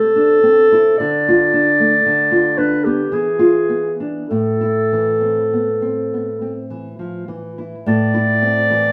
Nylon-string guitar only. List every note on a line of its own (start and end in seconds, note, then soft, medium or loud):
0.00 0.95 C3 medium
0.00 0.31 C4 soft
0.16 0.43 D4 soft
0.43 0.87 C4 soft
0.72 0.98 E4 soft
1.00 2.00 D3 medium
1.28 1.68 F4 medium
1.53 1.93 D4 soft
1.80 2.04 A3 soft
2.06 3.09 D3 medium
2.31 2.73 F4 soft
2.58 3.00 D4 soft
2.86 3.12 B3 soft
3.12 4.26 E3 medium
3.39 3.86 F4 soft
3.69 4.17 B3 soft
4.00 4.29 D4 soft
4.31 7.83 A2 soft
4.61 5.08 E4 soft
4.93 5.39 E3 soft
5.21 5.68 C4 soft
5.53 5.81 B3 soft
5.82 6.28 C4 soft
6.14 6.41 B3 soft
6.42 6.87 C4 soft
6.70 6.99 E3 soft
6.99 7.28 F3 soft
7.28 7.74 E3 soft
7.58 7.86 E4 soft
7.86 8.92 A2 medium
8.14 8.58 E4 soft
8.42 8.85 C4 medium
8.70 8.92 E3 medium